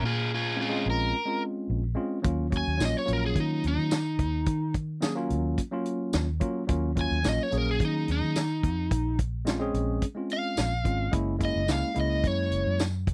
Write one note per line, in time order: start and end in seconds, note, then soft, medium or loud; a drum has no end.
0.03 0.87 A#2 medium
0.03 0.30 F4 medium
0.03 0.31 G#4 medium
0.34 0.58 F4 medium
0.34 0.60 G#4 medium
0.56 0.68 G#3 medium
0.56 0.68 C4 medium
0.56 0.69 C#4 medium
0.56 0.69 F4 medium
0.61 0.85 F4 medium
0.61 0.87 G#4 medium
0.69 1.15 G#3 medium
0.69 1.15 C4 medium
0.69 1.16 C#4 medium
0.69 1.16 F4 medium
0.86 1.12 A#1 medium
0.90 1.42 A#4 medium
1.26 1.82 G#3 medium
1.26 1.82 C4 medium
1.26 1.83 C#4 medium
1.26 1.83 F4 medium
1.70 1.95 A#1 medium
1.95 2.18 G#3 medium
1.95 2.18 C4 medium
1.95 2.19 C#4 medium
1.95 2.19 F4 medium
2.22 2.63 D#2 medium
2.22 2.46 F#3 medium
2.22 2.46 A#3 medium
2.22 2.46 C#4 medium
2.22 2.47 F4 medium
2.22 kick loud
2.22 closed hi-hat medium
2.50 2.74 F#3 medium
2.50 2.74 A#3 medium
2.50 2.74 C#4 medium
2.50 2.75 F#4 medium
2.50 kick medium
2.50 closed hi-hat medium
2.57 2.82 G#5 medium
2.67 2.80 D#2 medium
2.77 2.93 A#1 medium
2.77 3.01 F#3 medium
2.77 3.01 A#3 medium
2.77 3.02 C#4 medium
2.77 3.02 F4 medium
2.77 snare loud
2.77 closed hi-hat medium
2.77 tambourine loud
2.85 2.96 D#5 medium
2.98 3.10 C#5 medium
3.05 3.34 A#1 medium
3.05 3.95 F#3 medium
3.05 3.95 A#3 medium
3.05 3.96 C#4 medium
3.05 3.96 F4 medium
3.05 closed hi-hat medium
3.13 3.24 A#4 medium
3.26 3.38 G#4 medium
3.36 3.61 D#3 medium
3.36 kick medium
3.36 closed hi-hat medium
3.40 3.65 D#4 medium
3.64 3.77 D#2 medium
3.64 closed hi-hat medium
3.68 4.74 D#4 medium
3.78 4.20 D#3 medium
3.91 snare loud
3.91 closed hi-hat medium
3.91 tambourine loud
4.19 4.45 D#2 medium
4.19 kick medium
4.19 closed hi-hat medium
4.46 5.32 D#3 loud
4.46 kick loud
4.46 closed hi-hat medium
4.74 kick medium
4.74 closed hi-hat medium
5.01 5.13 F#3 medium
5.01 5.13 A#3 medium
5.01 5.13 C#4 medium
5.01 5.14 G#4 loud
5.01 snare loud
5.01 closed hi-hat medium
5.01 tambourine loud
5.15 5.60 F#3 medium
5.15 5.60 A#3 medium
5.15 5.61 C#4 medium
5.15 5.61 F4 loud
5.30 5.56 D#2 medium
5.30 closed hi-hat medium
5.58 kick medium
5.58 closed hi-hat medium
5.71 6.27 F#3 medium
5.71 6.27 A#3 medium
5.71 6.28 C#4 medium
5.71 6.28 F4 loud
5.86 closed hi-hat medium
6.13 6.39 D#2 medium
6.13 snare loud
6.13 closed hi-hat medium
6.13 tambourine loud
6.40 6.63 F#3 medium
6.40 6.63 A#3 medium
6.40 6.63 C#4 medium
6.40 6.64 F4 loud
6.40 kick medium
6.40 closed hi-hat medium
6.67 7.08 D#2 medium
6.67 6.90 F#3 medium
6.67 6.91 A#3 medium
6.67 6.91 C#4 medium
6.67 6.91 F4 medium
6.67 kick loud
6.67 closed hi-hat medium
6.95 7.18 F#3 medium
6.95 7.18 A#3 medium
6.95 7.19 C#4 medium
6.95 7.19 F4 medium
6.95 kick medium
6.95 closed hi-hat soft
7.01 7.26 G#5 medium
7.11 7.24 D#2 medium
7.23 7.38 A#1 medium
7.23 7.46 F#3 medium
7.23 7.46 A#3 medium
7.23 7.47 C#4 medium
7.23 7.47 F4 medium
7.23 snare medium
7.23 closed hi-hat medium
7.23 tambourine medium
7.29 7.43 D#5 medium
7.43 7.58 C#5 medium
7.51 7.78 A#1 medium
7.51 8.40 F#3 medium
7.51 8.41 A#3 medium
7.51 8.41 C#4 medium
7.51 8.41 G#4 medium
7.51 closed hi-hat medium
7.58 7.69 A#4 medium
7.71 7.82 G#4 medium
7.80 8.06 D#3 medium
7.80 kick medium
7.80 closed hi-hat medium
7.85 8.09 D#4 medium
8.08 8.21 D#2 medium
8.08 9.18 D#4 medium
8.08 closed hi-hat medium
8.22 8.65 D#3 medium
8.36 snare loud
8.36 closed hi-hat medium
8.36 tambourine loud
8.63 8.89 F2 medium
8.63 kick medium
8.63 closed hi-hat medium
8.91 9.70 A#1 medium
8.91 kick loud
8.91 closed hi-hat medium
9.19 kick medium
9.19 closed hi-hat medium
9.45 9.57 G#3 medium
9.45 9.57 C4 medium
9.45 9.58 C#4 medium
9.45 9.58 F4 medium
9.45 snare loud
9.45 closed hi-hat medium
9.45 tambourine loud
9.59 10.04 G#3 medium
9.59 10.04 C4 medium
9.59 10.05 C#4 medium
9.59 10.05 G#4 loud
9.74 10.00 A#1 medium
9.74 closed hi-hat medium
10.02 kick medium
10.02 closed hi-hat medium
10.15 10.71 G#3 medium
10.15 10.71 C4 medium
10.15 10.72 C#4 medium
10.15 10.72 F4 medium
10.30 11.12 F5 medium
10.30 closed hi-hat medium
10.57 10.83 A#1 medium
10.57 snare medium
10.57 closed hi-hat medium
10.57 tambourine loud
10.84 11.10 G#1 medium
10.84 11.07 G#3 medium
10.84 11.07 C4 medium
10.84 11.07 C#4 medium
10.84 11.08 F4 medium
10.84 kick medium
10.84 closed hi-hat soft
11.11 11.52 F#1 medium
11.11 11.34 G#3 medium
11.11 11.35 A#3 medium
11.11 11.35 C#4 medium
11.11 11.35 E4 loud
11.11 kick loud
11.11 closed hi-hat medium
11.38 11.62 G#3 medium
11.38 11.62 A#3 medium
11.38 11.63 C#4 medium
11.38 11.63 E4 medium
11.38 kick medium
11.38 closed hi-hat medium
11.45 11.70 D#5 medium
11.55 11.68 F#1 medium
11.67 11.81 C#2 medium
11.67 11.90 G#3 medium
11.67 11.90 A#3 medium
11.67 11.91 C#4 medium
11.67 11.91 E4 medium
11.67 snare medium
11.67 closed hi-hat medium
11.67 tambourine medium
11.72 11.97 F5 medium
11.94 12.22 C#2 medium
11.94 12.84 G#3 medium
11.94 12.84 A#3 medium
11.94 12.85 C#4 medium
11.94 12.85 E4 medium
11.94 closed hi-hat medium
12.00 12.25 D#5 medium
12.24 12.50 F#2 medium
12.24 12.80 C#5 medium
12.24 kick medium
12.24 closed hi-hat medium
12.51 12.65 F#1 medium
12.51 closed hi-hat medium
12.66 13.09 F#2 medium
12.79 snare loud
12.79 closed hi-hat medium
12.79 tambourine medium
13.07 13.14 F#1 medium
13.07 kick medium
13.07 closed hi-hat medium